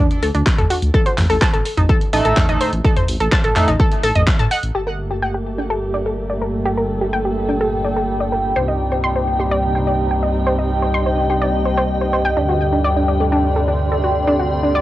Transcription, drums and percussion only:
0.11 closed hi-hat medium
0.23 open hi-hat loud
0.35 closed hi-hat medium
0.46 kick loud
0.46 clap loud
0.46 closed hi-hat medium
0.58 closed hi-hat medium
0.58 mid tom medium
0.70 open hi-hat loud
0.82 closed hi-hat medium
0.94 kick loud
0.94 closed hi-hat medium
1.06 closed hi-hat medium
1.18 clap medium
1.18 mid tom medium
1.18 open hi-hat medium
1.30 open hi-hat medium
1.42 kick loud
1.42 clap loud
1.42 closed hi-hat medium
1.54 closed hi-hat medium
1.65 open hi-hat loud
1.77 closed hi-hat medium
1.77 mid tom medium
1.89 kick loud
1.89 closed hi-hat medium
2.01 closed hi-hat medium
2.13 open hi-hat loud
2.25 closed hi-hat medium
2.37 kick loud
2.37 clap loud
2.37 closed hi-hat medium
2.37 mid tom medium
2.49 closed hi-hat medium
2.61 open hi-hat loud
2.73 closed hi-hat medium
2.85 kick loud
2.85 closed hi-hat medium
2.96 closed hi-hat medium
2.96 mid tom medium
3.08 open hi-hat loud
3.20 closed hi-hat medium
3.32 kick loud
3.32 clap loud
3.32 closed hi-hat medium
3.44 closed hi-hat medium
3.56 clap medium
3.56 mid tom medium
3.56 open hi-hat loud
3.68 closed hi-hat medium
3.80 kick loud
3.80 closed hi-hat medium
3.92 closed hi-hat medium
4.03 open hi-hat loud
4.16 closed hi-hat medium
4.16 mid tom medium
4.27 kick loud
4.27 clap loud
4.27 closed hi-hat medium
4.39 closed hi-hat medium
4.51 open hi-hat loud
4.63 closed hi-hat medium

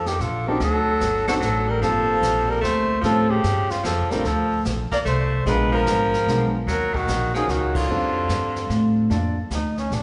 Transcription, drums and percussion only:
0.06 snare soft
0.20 snare soft
0.60 brush sweep soft
0.60 snare soft
1.01 snare medium
1.01 hi-hat pedal medium
1.28 snare medium
1.41 snare soft
1.82 brush sweep soft
1.82 snare soft
2.22 snare medium
2.22 hi-hat pedal medium
2.63 snare soft
3.04 brush sweep medium
3.04 snare soft
3.44 snare medium
3.44 hi-hat pedal medium
3.70 snare soft
3.84 snare medium
3.84 hi-hat pedal medium
4.11 snare soft
4.25 brush sweep medium
4.25 snare medium
4.65 snare medium
4.65 hi-hat pedal soft
4.92 kick soft
4.92 snare soft
5.05 snare soft
5.46 brush sweep soft
5.46 snare medium
5.86 snare medium
5.86 hi-hat pedal medium
6.14 snare soft
6.28 snare soft
6.68 brush sweep medium
6.68 snare medium
6.94 kick medium
7.08 snare medium
7.08 hi-hat pedal medium
7.35 snare soft
7.49 snare soft
7.75 kick medium
7.75 crash medium
7.89 brush sweep soft
8.29 snare medium
8.29 hi-hat pedal medium
8.56 snare soft
8.70 snare soft
9.10 brush sweep soft
9.10 snare soft
9.50 snare medium
9.50 hi-hat pedal medium
9.77 snare soft
9.91 snare soft

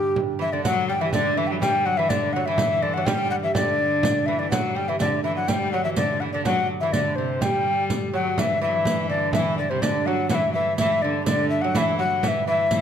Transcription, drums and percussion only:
0.16 frame drum medium
0.65 riq medium
0.65 frame drum medium
1.13 riq medium
1.13 frame drum medium
1.37 frame drum soft
1.62 riq medium
1.62 frame drum medium
2.10 riq medium
2.10 frame drum medium
2.35 frame drum soft
2.58 riq medium
2.58 frame drum medium
3.06 riq medium
3.06 frame drum medium
3.55 riq medium
3.55 frame drum loud
3.80 frame drum soft
4.03 riq medium
4.03 frame drum loud
4.28 frame drum soft
4.52 riq medium
4.52 frame drum loud
5.00 riq medium
5.00 frame drum medium
5.25 frame drum soft
5.48 riq medium
5.48 frame drum medium
5.96 riq medium
5.96 frame drum medium
6.21 frame drum soft
6.45 riq medium
6.45 frame drum medium
6.93 riq medium
6.93 frame drum medium
7.18 frame drum soft
7.42 riq medium
7.42 frame drum medium
7.90 riq medium
7.90 frame drum medium
8.38 riq medium
8.38 frame drum medium
8.85 riq medium
8.85 frame drum medium
9.33 riq medium
9.33 frame drum medium
9.82 riq medium
9.82 frame drum medium
10.29 riq medium
10.29 frame drum medium
10.78 riq medium
10.78 frame drum medium
11.26 riq medium
11.26 frame drum medium
11.51 frame drum soft
11.75 riq medium
11.75 frame drum medium
12.23 riq soft
12.23 frame drum medium
12.71 riq medium
12.71 frame drum medium

